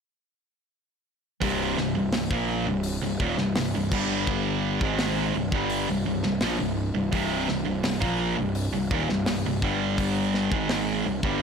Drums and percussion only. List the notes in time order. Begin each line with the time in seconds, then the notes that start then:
1.42 kick, open hi-hat
1.78 snare
2.12 snare, open hi-hat
2.31 kick
2.83 open hi-hat
3.20 kick
3.38 snare
3.56 snare, open hi-hat
3.92 kick, crash
4.27 kick
4.81 kick
4.99 snare, open hi-hat
5.52 kick
5.69 open hi-hat
6.23 snare
6.41 snare, open hi-hat
7.13 kick, open hi-hat
7.48 snare
7.84 snare, open hi-hat
8.02 kick
8.55 open hi-hat
8.91 kick
9.09 snare
9.26 snare, open hi-hat
9.62 kick
9.98 kick, open hi-hat
10.34 snare
10.52 kick
10.69 snare, open hi-hat
11.23 kick